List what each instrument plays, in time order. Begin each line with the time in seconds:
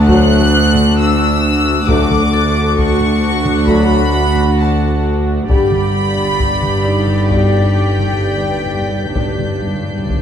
Already playing: double bass section D2, cello section D2, viola section D4 F#4, vibraphone F#5 D6, violin section A5 F#6
0.07 trombone section F#3 A3, french horn section D4 F#4, violin section F#6, taiko
0.75 taiko mid
0.97 violin section E6
1.88 double bass section D2, cello section D2, trombone section F#3 A3, french horn section D4 F#4, viola section D4 F#4, violin section D6, taiko
2.11 taiko mid
2.33 vibraphone A4
2.77 violin section C#6, taiko
3.00 taiko mid
3.45 taiko mid
3.66 trombone section F#3 A3, french horn section D4 F#4, violin section B5, taiko
4.13 vibraphone F#5
4.36 taiko mid
4.58 violin section A5
5.49 double bass section G1, cello section G2, trombone section D3 G3, french horn section D4 G4, viola section G4 D5, violin section B5 G6 B6, taiko
5.57 timpani G2
5.65 timpani G2
5.72 timpani G2, taiko mid
5.80 timpani G2
5.87 timpani G2
5.94 timpani G2
6.09 timpani G2
6.17 timpani G2
6.24 timpani G2
6.32 timpani G2
6.40 timpani G2, taiko
6.47 timpani G2
6.54 timpani G2
6.61 timpani G2, taiko mid
6.69 timpani G2
6.77 timpani G2
6.84 timpani G2, vibraphone D#4 D5
6.91 timpani G2
6.99 timpani G2
7.06 timpani G2, taiko mid
7.14 timpani G2
7.22 timpani G2
7.29 timpani G2, trombone section B2 G3, french horn section G4 D5, violin section G5, taiko
7.37 timpani G2
7.45 timpani G2
7.60 timpani G2
7.75 timpani G2
7.83 timpani G2
7.90 timpani G2
7.98 timpani G2, taiko mid
8.05 timpani G2
8.12 timpani G2
8.20 timpani G2, vibraphone B4
8.28 timpani G2
8.35 timpani G2
8.43 timpani G2
8.50 timpani G2
8.58 timpani G2
8.65 timpani G2
8.74 timpani G2
8.81 timpani G2
8.89 timpani G2
8.97 timpani G2
9.04 timpani G2
9.12 double bass section G1, timpani G2, trombone section B2 G3, viola section D4 G4, french horn section G4 D5, violin section D5, taiko, reverse cymbal
9.17 cello section G2, timpani G2
9.28 timpani G2
9.35 timpani G2, taiko mid
9.43 timpani G2
9.51 timpani G2
9.60 timpani G2
9.67 timpani G2
9.75 timpani G2
9.83 timpani G2
9.91 timpani G2
9.99 timpani G2, violin section C7
10.06 timpani G2, french horn section D4, taiko
10.14 timpani G2